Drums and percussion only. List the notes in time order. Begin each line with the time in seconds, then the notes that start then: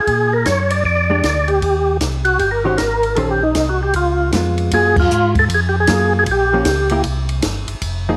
0.07 kick, ride
0.45 kick, snare, hi-hat pedal, ride
0.70 ride
0.85 kick
1.23 kick, snare, hi-hat pedal, ride
1.48 ride
1.62 kick, ride
2.01 kick, snare, hi-hat pedal, ride
2.25 ride
2.39 kick, ride
2.78 kick, snare, hi-hat pedal, ride
3.03 ride
3.16 kick, ride
3.55 kick, snare, hi-hat pedal, ride
3.94 kick, ride
4.32 kick, snare, hi-hat pedal, ride
4.58 ride
4.71 kick, ride
4.96 kick, crash
5.11 hi-hat pedal
5.35 kick, ride
5.49 kick, ride
5.87 kick, snare, hi-hat pedal, ride
6.26 kick, ride
6.65 kick, snare, hi-hat pedal, ride
6.89 ride
7.04 kick, ride
7.29 ride
7.42 kick, snare, hi-hat pedal, ride
7.68 ride
7.82 kick, ride